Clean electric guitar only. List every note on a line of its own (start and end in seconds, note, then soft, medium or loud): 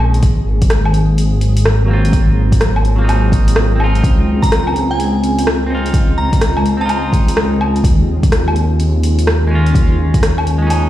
0.00 0.20 G#3 medium
0.00 0.22 C4 medium
0.00 0.23 C#4 medium
0.00 0.24 D#4 medium
1.85 2.94 F#3 medium
1.85 2.96 A#3 medium
1.90 2.97 C4 medium
1.90 2.98 F4 medium
2.96 3.76 F#3 medium
2.96 3.78 A#3 medium
3.01 3.74 C4 medium
3.01 3.79 D#4 medium
3.75 5.65 C4 medium
3.80 5.68 D#4 medium
3.80 5.70 F4 medium
5.67 6.75 C4 medium
5.71 6.77 D#4 medium
5.75 6.80 F4 medium
6.77 7.82 C4 medium
6.77 7.84 D#4 medium
6.85 7.86 F4 medium
9.47 10.56 G#3 medium
9.47 10.58 C#4 medium
9.55 10.60 F4 medium
10.58 10.89 G#3 medium
10.58 10.89 C#4 medium
10.67 10.89 D#4 medium